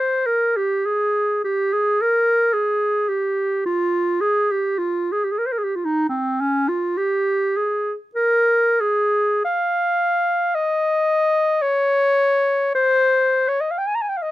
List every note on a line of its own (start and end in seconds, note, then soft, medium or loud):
0.00 0.28 C5 medium
0.26 0.58 A#4 medium
0.56 0.87 G4 medium
0.85 1.41 G#4 medium
1.44 1.74 G4 medium
1.73 2.03 G#4 medium
2.01 2.55 A#4 medium
2.53 3.10 G#4 medium
3.09 3.64 G4 medium
3.66 4.23 F4 medium
4.21 4.53 G#4 medium
4.51 4.80 G4 medium
4.78 5.14 F4 medium
5.12 5.26 G#4 medium
5.24 5.33 G4 medium
5.31 5.40 G#4 medium
5.39 5.48 A#4 medium
5.46 5.54 C5 medium
5.52 5.60 A#4 medium
5.58 5.65 G#4 medium
5.64 5.77 G4 medium
5.76 5.86 F4 medium
5.85 6.08 D#4 medium
6.09 6.42 C4 medium
6.41 6.70 C#4 medium
6.68 6.99 F4 medium
6.97 7.58 G4 medium
7.57 7.94 G#4 medium
8.15 8.82 A#4 medium
8.81 9.44 G#4 medium
9.45 10.56 F5 medium
10.55 11.63 D#5 medium
11.62 12.74 C#5 medium
12.75 13.50 C5 medium
13.48 13.62 C#5 medium
13.61 13.72 D#5 medium
13.71 13.80 F5 medium
13.78 13.88 G5 medium
13.87 13.97 G#5 medium
13.95 14.03 A#5 medium
14.02 14.11 G#5 medium
14.09 14.19 G5 medium
14.17 14.24 F5 medium
14.22 14.31 D#5 medium